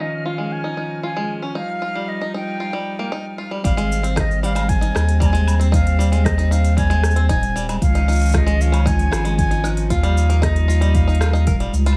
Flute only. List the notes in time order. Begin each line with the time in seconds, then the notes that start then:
0.01 D#5
0.25 F5
0.52 G#5
1.05 G#5
1.56 F5
2.09 D#5
2.36 G5
3.64 F5
4.17 D#5 F5
4.43 F5 G5
4.69 G#5
5.21 A#5
5.26 G#5
5.73 F5
6.25 D#5
6.52 F5
6.78 G#5
7.29 G#5
7.82 F5
8.34 F5
8.38 D#5
8.61 F5
8.87 G#5
9.38 G#5
9.91 F5
10.44 D#5
10.95 F5